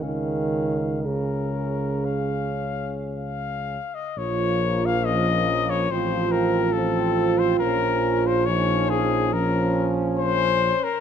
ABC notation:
X:1
M:4/4
L:1/16
Q:1/4=69
K:Db
V:1 name="Cornet"
f4 B4 f4 f3 e | [K:Bbm] d3 f e3 d c2 B2 =A3 c | B3 c d2 A2 B3 z c3 B |]
V:2 name="French horn section"
A4 A8- A2 z2 | [K:Bbm] F4 D4 F8- | F4 E4 D8 |]
V:3 name="Trombone section"
D4 D8- D2 z2 | [K:Bbm] B,8 C4 C4 | D4 D4 D8 |]
V:4 name="Euphonium" clef=bass
E,4 D,8 z4 | [K:Bbm] F,8 F,4 F,4 | F,4 F,4 F,6 z2 |]
V:5 name="Tuba" clef=bass
D,,12- D,,2 z2 | [K:Bbm] B,,,8 =A,,,8 | B,,,12- B,,,2 z2 |]